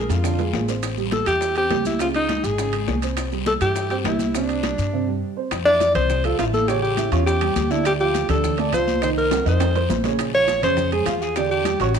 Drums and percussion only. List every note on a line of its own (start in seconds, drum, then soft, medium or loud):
0.10 high bongo soft
0.10 high timbale medium
0.10 short guiro medium
0.10 maracas medium
0.24 high bongo medium
0.24 high conga soft
0.24 high timbale medium
0.24 long guiro medium
0.24 maracas medium
0.39 high conga soft
0.39 low timbale medium
0.39 maracas soft
0.53 high bongo medium
0.53 low bongo medium
0.53 high conga medium
0.53 low timbale medium
0.53 short guiro medium
0.53 maracas soft
0.68 high bongo soft
0.68 low timbale medium
0.68 short guiro medium
0.68 maracas medium
0.83 high bongo medium
0.83 high conga soft
0.83 high timbale medium
0.83 long guiro medium
0.83 maracas medium
0.97 high conga soft
0.97 maracas soft
1.11 high bongo medium
1.11 high conga medium
1.11 high timbale medium
1.11 low timbale medium
1.11 short guiro medium
1.11 maracas soft
1.26 high conga soft
1.26 high timbale medium
1.26 short guiro medium
1.26 maracas medium
1.41 high bongo medium
1.41 high conga soft
1.41 long guiro medium
1.41 maracas medium
1.56 high conga soft
1.56 high timbale medium
1.56 maracas soft
1.70 high bongo medium
1.70 low bongo medium
1.70 high conga medium
1.70 high timbale medium
1.70 low timbale medium
1.70 short guiro medium
1.70 maracas soft
1.85 high conga medium
1.85 short guiro medium
1.85 maracas medium
1.99 high bongo medium
1.99 high conga soft
1.99 high timbale medium
1.99 long guiro medium
1.99 maracas medium
2.14 high bongo soft
2.14 high conga soft
2.14 high timbale medium
2.14 maracas soft
2.29 high bongo medium
2.29 high conga medium
2.29 high timbale medium
2.29 low timbale medium
2.29 short guiro medium
2.29 maracas soft
2.44 high bongo soft
2.44 short guiro medium
2.44 maracas medium
2.58 high bongo medium
2.58 high conga soft
2.58 high timbale medium
2.58 long guiro medium
2.58 maracas medium
2.73 high conga soft
2.73 high timbale medium
2.73 maracas soft
2.87 high bongo medium
2.87 low bongo medium
2.87 high conga medium
2.87 low timbale medium
2.87 short guiro medium
2.87 maracas soft
3.02 high bongo soft
3.02 high timbale medium
3.02 short guiro medium
3.02 maracas medium
3.17 high bongo medium
3.17 high conga soft
3.17 high timbale medium
3.17 long guiro medium
3.17 maracas medium
3.31 high conga soft
3.31 maracas soft
3.46 high bongo medium
3.46 high conga medium
3.46 high timbale medium
3.46 low timbale medium
3.46 short guiro medium
3.46 maracas soft
3.61 high conga soft
3.61 high timbale medium
3.61 short guiro medium
3.61 maracas medium
3.75 high bongo medium
3.75 high conga soft
3.75 long guiro medium
3.75 maracas medium
3.90 high conga soft
3.90 high timbale medium
3.90 maracas soft
4.04 high bongo medium
4.04 low bongo medium
4.04 high conga medium
4.04 high timbale medium
4.04 low timbale medium
4.04 short guiro medium
4.04 maracas soft
4.19 high conga medium
4.19 short guiro medium
4.19 maracas medium
4.34 high bongo medium
4.34 high conga soft
4.34 high timbale medium
4.34 long guiro medium
4.34 maracas medium
4.49 high bongo soft
4.49 high conga soft
4.49 high timbale medium
4.49 maracas soft
4.63 high bongo medium
4.63 high conga medium
4.63 high timbale medium
4.63 low timbale medium
4.63 short guiro medium
4.63 maracas soft
4.78 high bongo soft
4.78 short guiro medium
4.78 maracas medium
5.51 high bongo medium
5.51 high conga soft
5.51 high timbale medium
5.51 long guiro medium
5.51 maracas medium
5.66 high bongo soft
5.66 high conga soft
5.66 maracas soft
5.80 high bongo medium
5.80 high conga medium
5.80 high timbale medium
5.80 short guiro medium
5.80 maracas medium
5.95 high bongo soft
5.95 high conga soft
5.95 low conga medium
5.95 high timbale medium
5.95 short guiro medium
5.95 maracas soft
6.09 high bongo medium
6.09 high conga soft
6.09 low conga medium
6.09 long guiro medium
6.09 maracas medium
6.24 high bongo soft
6.24 high conga soft
6.24 high timbale medium
6.24 maracas soft
6.38 high bongo soft
6.38 low bongo medium
6.38 high conga soft
6.38 high timbale medium
6.38 low timbale medium
6.38 short guiro medium
6.38 maracas medium
6.53 high conga medium
6.53 short guiro medium
6.53 maracas soft
6.68 high bongo medium
6.68 high timbale medium
6.68 long guiro medium
6.68 maracas medium
6.83 high bongo soft
6.83 maracas soft
6.97 high bongo medium
6.97 high conga medium
6.97 high timbale medium
6.97 short guiro medium
6.97 maracas medium
7.12 high bongo soft
7.12 high conga soft
7.12 high timbale medium
7.12 short guiro medium
7.12 maracas soft
7.26 high bongo medium
7.26 high conga soft
7.26 long guiro medium
7.26 maracas medium
7.41 high bongo soft
7.41 high conga soft
7.41 high timbale medium
7.41 maracas soft
7.56 high bongo soft
7.56 low bongo medium
7.56 high conga loud
7.56 high timbale medium
7.56 short guiro medium
7.56 maracas medium
7.71 high conga medium
7.71 short guiro medium
7.71 maracas soft
7.85 high bongo medium
7.85 high conga soft
7.85 high timbale medium
7.85 long guiro medium
7.85 maracas medium
8.00 high bongo soft
8.00 high conga soft
8.00 maracas soft
8.14 high bongo medium
8.14 high conga medium
8.14 high timbale medium
8.14 short guiro medium
8.14 maracas medium
8.29 high bongo soft
8.29 high conga soft
8.29 low conga medium
8.29 high timbale medium
8.29 short guiro medium
8.29 maracas soft
8.44 high bongo medium
8.44 high conga soft
8.44 low conga medium
8.44 long guiro medium
8.44 maracas medium
8.58 high bongo soft
8.58 high timbale medium
8.58 maracas soft
8.73 high bongo soft
8.73 low bongo medium
8.73 high conga soft
8.73 high timbale medium
8.73 short guiro medium
8.73 maracas medium
8.88 high conga medium
8.88 short guiro medium
8.88 maracas soft
9.02 high bongo medium
9.02 high timbale medium
9.02 long guiro medium
9.02 maracas medium
9.17 high bongo soft
9.17 high conga soft
9.17 maracas soft
9.31 high bongo medium
9.31 high conga medium
9.31 high timbale loud
9.31 short guiro medium
9.31 maracas medium
9.46 high bongo soft
9.46 high conga soft
9.46 low timbale medium
9.46 short guiro medium
9.46 maracas soft
9.60 high bongo medium
9.60 high conga soft
9.60 high timbale loud
9.60 long guiro medium
9.60 maracas medium
9.74 high bongo soft
9.74 high conga soft
9.74 low timbale loud
9.74 maracas soft
9.90 high bongo soft
9.90 low bongo medium
9.90 high conga medium
9.90 low timbale medium
9.90 short guiro medium
9.90 maracas medium
10.04 high conga medium
10.04 low timbale medium
10.04 short guiro medium
10.04 maracas soft
10.19 high bongo medium
10.19 high conga soft
10.19 high timbale loud
10.19 long guiro medium
10.19 maracas medium
10.33 high bongo soft
10.33 high conga soft
10.33 maracas soft
10.48 high bongo medium
10.48 high conga medium
10.48 high timbale medium
10.48 short guiro medium
10.48 maracas medium
10.62 high bongo soft
10.62 high conga soft
10.62 low conga medium
10.62 high timbale medium
10.62 short guiro medium
10.62 maracas soft
10.77 high bongo medium
10.77 high conga soft
10.77 low conga medium
10.77 long guiro medium
10.77 maracas medium
10.92 high bongo soft
10.92 high conga soft
10.92 high timbale medium
10.92 maracas soft
11.06 high bongo soft
11.06 low bongo medium
11.06 high conga soft
11.06 high timbale loud
11.06 short guiro medium
11.06 maracas medium
11.22 short guiro medium
11.22 maracas soft
11.36 high bongo medium
11.36 high conga soft
11.36 high timbale medium
11.36 long guiro medium
11.36 maracas medium
11.50 high bongo soft
11.50 high conga soft
11.50 maracas soft
11.65 high bongo medium
11.65 high conga medium
11.65 high timbale medium
11.65 short guiro medium
11.65 maracas medium
11.79 high conga soft
11.79 high timbale medium
11.79 short guiro medium
11.79 maracas soft
11.94 high bongo medium
11.94 high conga soft
11.94 long guiro medium
11.94 maracas medium